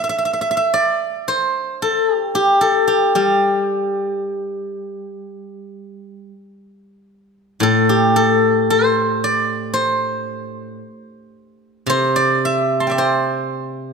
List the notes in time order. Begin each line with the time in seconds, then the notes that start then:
0.04 E5
0.09 E5
0.18 E5
0.25 E5
0.33 E5
0.41 E5
0.51 E5
0.57 E5
0.74 D5
1.28 C5
1.82 A4
2.14 G4
2.35 G4
2.61 A4
2.88 G4
3.15 G3 G4
7.60 A2 A4
7.89 G4
8.16 A4
8.70 C5
9.24 D5
9.74 C5
11.87 C3 C5
12.16 D5
12.45 E5
12.80 A5 C6
12.87 E5 G5
12.91 D5
12.98 C5